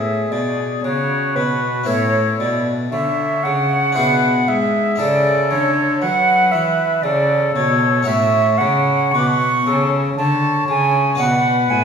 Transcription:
Already playing: harpsichord A2 D4 E4 B4, cello A2, oboe G#4, flute E5
0.32 harpsichord B2, cello B2, flute D5
0.83 cello C#3, harpsichord C#3, oboe F#4, flute C#5
1.36 cello B2, harpsichord B2, flute B4
1.84 harpsichord C#4 E4 A4, flute C#5
1.88 cello A2, harpsichord A2, oboe E4
2.39 harpsichord B2, cello B2, flute D5
2.91 harpsichord D3, cello D3, oboe C#5, flute E5
3.43 cello C#3, harpsichord C#3, flute F#5
3.92 harpsichord D4 E4 G#4, oboe B4
3.97 cello B2, harpsichord B2
4.48 harpsichord G#2, cello G#2, oboe G#4, flute E5
4.96 harpsichord C#4 E4 A4, oboe A4
5.00 harpsichord C#3, cello C#3, flute D5
5.51 harpsichord D3, cello D3, flute C#5
6.01 harpsichord F#3, cello F#3, oboe B4, flute F#5
6.52 harpsichord E3, cello E3, flute E5
7.03 harpsichord C#3, cello C#3, oboe A4, flute D5
7.55 cello B2, harpsichord B2, flute C#5
8.02 harpsichord C#4 F#4 C#5, flute E5
8.07 harpsichord A2, cello A2, oboe C#5
8.58 cello C#3, harpsichord C#3, flute F#5
9.12 cello B2, harpsichord B2, oboe B4, flute C#6
9.19 flute D6
9.27 flute C#6
9.66 cello C#3, harpsichord C#3, oboe A4
10.17 cello D3, harpsichord D3, oboe C#5, flute A5
10.68 harpsichord C#3, cello C#3, flute G#5
11.15 harpsichord B3 F#4 D5, flute F#5
11.19 cello B2, harpsichord B2, oboe B4
11.70 harpsichord A2, cello A2, flute G#5

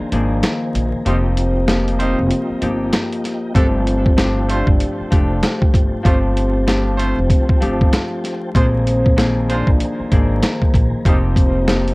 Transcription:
Already playing: harp D#3 F3 A#3 C4 G#4, tonewheel organ D#3 C5 G#5 A#5, vibraphone D4 D5
0.12 upright bass G#1, harp D#3 F3 A#3 C4 G#4, closed hi-hat
0.43 finger snap, snare, closed hi-hat
0.75 upright bass A#1, closed hi-hat
1.05 upright bass F1, harp F3 A#3 C4 D#4 G4, trumpet section G3 D#4 C5, vibraphone C4 C5, tonewheel organ F4 D#5 G5, closed hi-hat
1.37 closed hi-hat
1.67 harp F3 A#3 C4 D#4 G4, finger snap, snare, closed hi-hat
1.88 closed hi-hat
1.99 trumpet section G3 D#4 C5, vibraphone C4 C5, closed hi-hat
2.19 upright bass F1
2.30 closed hi-hat
2.50 muted upright bass stroke
2.61 upright bass G1, harp F3 A#3 C4 D#4 G4, closed hi-hat
2.93 finger snap, snare, closed hi-hat
3.13 closed hi-hat
3.24 snare, closed hi-hat
3.54 upright bass G1, harp F3 A3 C4 D4 G4, vibraphone C4 C5, trumpet section D4 A4, tonewheel organ F4 C5 A5, kick, closed hi-hat
3.87 closed hi-hat
4.06 kick
4.17 harp F3 A3 C4 D4 G4, finger snap, snare, closed hi-hat
4.49 trumpet section A3 F4 C5, vibraphone D4 D5, closed hi-hat
4.67 upright bass G1, kick
4.80 closed hi-hat
5.00 muted upright bass stroke
5.10 upright bass F1, harp F3 A3 C4 D4 G4, kick, closed hi-hat
5.43 finger snap, snare, closed hi-hat
5.62 kick
5.74 upright bass G1, kick, closed hi-hat
6.03 upright bass G1, harp F3 A3 C4 D4 G4, trumpet section A3 F4 C5, vibraphone C4 C5, kick, closed hi-hat
6.37 closed hi-hat
6.67 harp F3 A3 C4 D4 G4, finger snap, snare, closed hi-hat
6.98 trumpet section A3 F4 C5, vibraphone C4 C5, closed hi-hat
7.18 upright bass F1
7.30 kick, closed hi-hat
7.49 muted upright bass stroke, kick
7.60 upright bass G1, harp F3 A3 C4 D4 G4, closed hi-hat
7.81 kick
7.93 finger snap, snare, closed hi-hat
8.24 snare, closed hi-hat
8.54 upright bass A#1, tonewheel organ D#3 G#5 A#5, harp F3 A#3 C4 D#4 G#4, trumpet section G#3 F4 C5, vibraphone C4 C5, kick, closed hi-hat
8.87 closed hi-hat
9.06 kick
9.16 harp D#3 F3 A#3 C4 G#4, finger snap, snare, closed hi-hat
9.49 trumpet section G#3 F4 C5, vibraphone D4 D5, closed hi-hat
9.67 upright bass A#1, kick
9.80 closed hi-hat
10.00 muted upright bass stroke
10.12 upright bass G#1, harp D#3 F3 A#3 C4 G#4, kick, closed hi-hat
10.43 finger snap, snare, closed hi-hat
10.62 kick
10.74 upright bass A#1, kick, closed hi-hat
11.05 upright bass F1, harp F3 A#3 C4 D#4 G4, trumpet section G3 D#4 C5, vibraphone C4 C5, tonewheel organ F4 G5, kick, closed hi-hat
11.36 kick, closed hi-hat
11.67 harp F3 A#3 C4 D#4 G4, finger snap, snare, closed hi-hat
11.88 closed hi-hat

